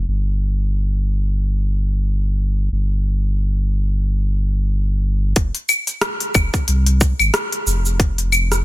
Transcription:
0.07 2.69 G1 medium
2.72 5.33 G1 medium
5.36 5.51 F1 loud
5.36 kick loud
5.36 open hi-hat medium
5.36 cabasa soft
5.55 open hi-hat soft
5.69 cabasa medium
5.69 claves medium
5.87 open hi-hat soft
5.87 cabasa soft
6.01 cross-stick loud
6.01 open hi-hat medium
6.01 cabasa soft
6.20 open hi-hat soft
6.35 6.49 F1 loud
6.35 kick loud
6.35 cabasa medium
6.35 claves medium
6.54 kick medium
6.54 cabasa soft
6.68 7.13 C2 medium
6.68 open hi-hat medium
6.68 cabasa soft
6.86 open hi-hat soft
7.01 kick loud
7.01 cabasa medium
7.19 7.30 G#1 medium
7.19 cabasa soft
7.19 claves medium
7.34 cross-stick loud
7.34 open hi-hat medium
7.34 cabasa soft
7.52 open hi-hat soft
7.66 8.65 F1 medium
7.66 cabasa medium
7.85 cabasa soft
8.00 kick loud
8.00 open hi-hat medium
8.00 cabasa soft
8.18 open hi-hat soft
8.32 cabasa medium
8.32 claves medium
8.52 cross-stick soft
8.52 open hi-hat soft
8.52 cabasa soft

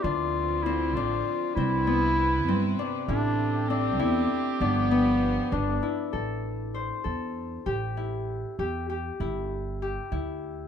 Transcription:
0.00 0.72 B3 medium
0.00 2.35 E4 medium
0.00 0.65 F4 loud
0.04 0.95 D2 medium
0.04 1.56 D3 medium
0.04 1.55 F3 medium
0.04 1.55 C4 medium
0.04 0.96 D4 medium
0.63 1.57 C4 medium
0.63 0.96 E4 medium
0.95 1.21 A1 medium
0.95 2.79 D4 medium
0.95 1.54 F4 medium
1.55 2.48 C2 medium
1.55 4.58 C3 medium
1.55 1.93 C4 medium
1.55 2.77 E4 loud
1.55 3.07 E4 medium
1.55 3.06 B4 medium
1.87 2.54 B3 medium
2.48 2.73 G2 medium
2.48 4.97 C4 medium
2.79 3.70 D4 medium
3.08 4.00 A1 medium
3.08 4.61 A3 medium
3.08 3.70 D4 loud
3.08 3.99 E4 medium
3.08 6.11 G4 medium
3.68 4.63 C4 medium
3.68 4.61 D4 medium
3.99 4.26 E2 loud
3.99 5.82 E4 medium
4.61 5.37 G1 medium
4.61 6.13 F3 medium
4.61 6.12 B3 medium
4.61 5.54 B3 medium
4.61 5.52 D4 medium
4.91 6.80 B3 medium
5.52 5.78 G1 medium
5.52 8.32 D4 medium
5.52 6.14 D4 medium
5.83 7.97 E4 medium
6.13 6.90 A1 medium
6.13 7.04 A4 medium
6.74 8.72 C5 medium
7.04 7.57 E2 medium
7.04 9.24 A4 medium
7.66 8.43 A1 medium
7.66 8.59 G4 medium
7.97 9.20 E4 medium
8.59 9.10 E2 medium
8.59 8.89 G4 medium
8.89 9.82 G4 medium
9.20 9.96 G1 medium
9.20 10.11 E4 medium
9.82 10.68 G4 medium
10.12 10.63 D2 medium
10.12 10.68 E4 medium

